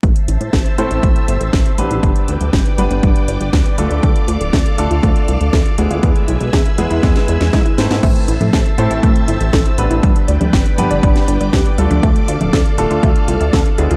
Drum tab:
CC |----------------|----------------|----------------|----------------|
HH |xxxxxxxxxxxxxxxx|xxxxxxxxxxxxxxxx|xxxxxxxxxxxxxxxx|xxxxxxxxxxxxxxxx|
SD |----o-------o---|----o-------o---|----o-------o---|----o---oo-oo-oo|
CG |----------------|----------------|----------------|----------------|
BD |o---o---o---o---|o---o---o---o---|o---o---o---o---|o---o---o---o---|

CC |x---------------|----------------|----------------|
HH |xxxxxxxxxxxxxxxx|xxxxxxxxxxxxxxxx|xxxxxxxxxxxxxxxx|
SD |----o-------o---|----o----o--o---|----o-------o---|
CG |---o------------|---o--o--------o|---o------------|
BD |o---o---o---o---|o---o---o---o---|o---o---o---o---|